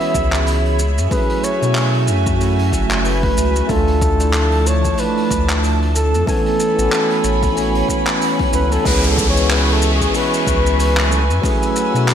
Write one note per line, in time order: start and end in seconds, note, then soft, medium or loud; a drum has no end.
0.00 0.81 E3 medium
0.00 0.81 G#3 medium
0.00 0.81 B3 medium
0.00 0.81 C#4 medium
0.00 0.81 F#4 medium
0.00 0.77 G#4 medium
0.00 0.81 G#4 medium
0.00 0.75 C#5 medium
0.00 0.77 E5 medium
0.00 0.79 E5 medium
0.00 0.75 B5 medium
0.00 open hi-hat medium
0.14 0.99 C#2 medium
0.14 kick medium
0.14 shaker medium
0.32 clap medium
0.32 shaker medium
0.46 open hi-hat medium
0.46 shaker soft
0.66 open hi-hat medium
0.79 8.81 A3 medium
0.79 3.66 F#4 medium
0.79 3.66 E5 medium
0.79 3.66 G#5 medium
0.79 shaker medium
0.98 1.08 F#2 medium
0.98 shaker medium
1.09 1.57 F#3 medium
1.09 1.57 A3 medium
1.09 1.58 C#4 medium
1.09 1.58 E4 medium
1.09 1.58 G#4 loud
1.09 1.45 B4 loud
1.09 kick loud
1.09 open hi-hat medium
1.09 shaker soft
1.29 open hi-hat medium
1.44 2.08 C#5 loud
1.44 shaker medium
1.58 2.10 B2 medium
1.58 2.35 F#3 medium
1.58 2.36 A3 medium
1.58 2.37 C#4 medium
1.63 2.38 E4 medium
1.63 2.39 F#4 medium
1.63 shaker soft
1.75 clap medium
1.75 open hi-hat medium
1.75 shaker soft
1.94 open hi-hat medium
2.08 2.74 F#2 medium
2.08 shaker medium
2.26 kick medium
2.26 shaker medium
2.37 3.64 F#3 medium
2.37 3.65 A3 medium
2.37 3.66 C#4 medium
2.37 open hi-hat medium
2.37 shaker soft
2.42 3.67 E4 medium
2.42 3.68 F#4 medium
2.59 open hi-hat medium
2.72 3.31 F#1 medium
2.72 kick medium
2.72 shaker medium
2.91 clap medium
2.91 shaker medium
3.04 3.72 B4 loud
3.04 open hi-hat medium
3.04 shaker soft
3.23 kick loud
3.23 open hi-hat medium
3.37 3.62 C#2 medium
3.37 shaker medium
3.56 shaker medium
3.67 4.93 D2 loud
3.67 6.25 F3 medium
3.67 4.15 A3 medium
3.67 6.25 D4 medium
3.67 4.16 D4 medium
3.67 4.17 F4 loud
3.67 4.69 A4 medium
3.67 6.25 A5 medium
3.67 kick loud
3.67 open hi-hat medium
3.67 shaker soft
3.87 open hi-hat medium
4.01 kick medium
4.01 shaker medium
4.16 4.93 A3 medium
4.16 4.95 D4 medium
4.16 shaker medium
4.24 4.97 E4 medium
4.33 clap medium
4.33 open hi-hat medium
4.33 shaker soft
4.52 open hi-hat medium
4.67 5.01 C#5 loud
4.67 shaker medium
4.85 kick medium
4.85 shaker medium
4.95 6.22 A3 medium
4.95 6.24 D4 medium
4.95 open hi-hat medium
4.95 shaker soft
5.00 6.26 E4 medium
5.00 5.64 B4 medium
5.17 open hi-hat medium
5.31 6.15 D2 medium
5.31 kick medium
5.31 shaker medium
5.49 clap medium
5.49 shaker medium
5.63 open hi-hat medium
5.63 shaker medium
5.82 open hi-hat medium
5.96 6.25 A4 loud
5.96 shaker medium
6.14 6.24 F2 medium
6.14 shaker medium
6.26 6.73 E3 medium
6.26 6.73 A3 medium
6.26 6.74 B3 medium
6.26 6.74 C#4 medium
6.26 8.17 A4 loud
6.26 8.83 C#5 medium
6.26 8.83 G#5 medium
6.26 6.75 G#5 loud
6.26 8.83 B5 medium
6.26 kick loud
6.26 open hi-hat medium
6.26 shaker soft
6.46 open hi-hat medium
6.60 shaker medium
6.74 6.88 A1 medium
6.74 7.51 E3 medium
6.74 7.52 A3 medium
6.74 7.53 B3 medium
6.79 7.54 C#4 medium
6.79 7.55 F#4 medium
6.79 shaker medium
6.92 clap medium
6.92 open hi-hat medium
6.92 shaker soft
7.10 open hi-hat medium
7.24 7.83 A1 medium
7.24 shaker medium
7.43 kick medium
7.43 open hi-hat medium
7.43 shaker medium
7.53 8.49 E3 medium
7.53 8.50 A3 medium
7.53 8.51 B3 medium
7.53 open hi-hat medium
7.53 swell medium
7.57 8.51 C#4 medium
7.57 8.52 F#4 medium
7.57 shaker soft
7.75 open hi-hat medium
7.89 kick medium
7.89 shaker medium
8.07 clap medium
8.07 open hi-hat soft
8.07 shaker medium
8.21 open hi-hat medium
8.21 shaker medium
8.39 kick loud
8.39 open hi-hat medium
8.51 8.78 C#2 medium
8.51 8.62 E3 medium
8.51 8.62 A3 medium
8.51 8.63 B3 medium
8.51 8.63 C#4 medium
8.51 8.64 A4 medium
8.51 8.74 B4 loud
8.51 shaker medium
8.71 8.88 A4 loud
8.71 open hi-hat medium
8.71 shaker medium
8.84 10.09 C#2 loud
8.84 9.31 E3 medium
8.84 9.31 G#3 medium
8.84 9.32 B3 medium
8.84 9.32 C#4 medium
8.84 9.33 G#4 loud
8.84 11.09 B4 medium
8.84 9.07 B4 loud
8.84 11.09 E5 medium
8.84 12.14 G#5 medium
8.84 11.09 C#6 medium
8.84 kick loud
8.84 open hi-hat medium
8.84 crash loud
8.84 downlifter medium
8.84 shaker medium
9.04 open hi-hat medium
9.04 shaker medium
9.08 9.28 A4 medium
9.18 kick loud
9.18 shaker loud
9.29 10.09 E3 medium
9.29 9.52 C#5 loud
9.35 10.10 G#3 medium
9.35 10.11 B3 medium
9.35 10.12 C#4 medium
9.35 shaker medium
9.40 10.13 F#4 medium
9.49 9.74 B4 medium
9.49 clap medium
9.49 open hi-hat medium
9.49 shaker medium
9.69 open hi-hat medium
9.73 9.94 A4 medium
9.82 shaker loud
9.95 10.18 G#4 medium
10.01 kick medium
10.01 shaker medium
10.10 11.06 E3 medium
10.10 11.07 G#3 medium
10.10 11.08 B3 medium
10.10 shaker medium
10.15 11.09 C#4 medium
10.15 11.10 F#4 medium
10.15 11.44 B4 loud
10.15 open hi-hat medium
10.34 open hi-hat medium
10.34 shaker medium
10.47 11.31 C#2 medium
10.47 kick loud
10.47 shaker medium
10.66 shaker soft
10.79 open hi-hat medium
10.79 shaker medium
10.97 clap medium
10.97 open hi-hat medium
11.09 11.20 F#3 medium
11.09 11.20 A3 medium
11.09 12.14 A3 medium
11.09 11.21 C#4 medium
11.09 11.21 E4 medium
11.09 11.22 A4 medium
11.09 12.14 F#5 medium
11.09 12.14 E6 medium
11.09 shaker medium
11.30 11.40 F#2 medium
11.30 shaker medium
11.41 11.89 F#3 medium
11.41 11.89 A3 medium
11.41 11.90 C#4 medium
11.41 11.90 E4 medium
11.41 11.91 G#4 loud
11.41 12.14 B4 loud
11.41 kick loud
11.41 open hi-hat medium
11.41 shaker medium
11.63 open hi-hat medium
11.63 shaker soft
11.76 shaker medium
11.91 12.14 B2 medium
11.91 12.14 F#3 medium
11.91 12.14 A3 medium
11.91 12.14 C#4 medium
11.96 12.14 E4 medium
11.96 12.14 F#4 medium
11.96 shaker medium
12.08 clap medium
12.08 open hi-hat medium
12.08 shaker medium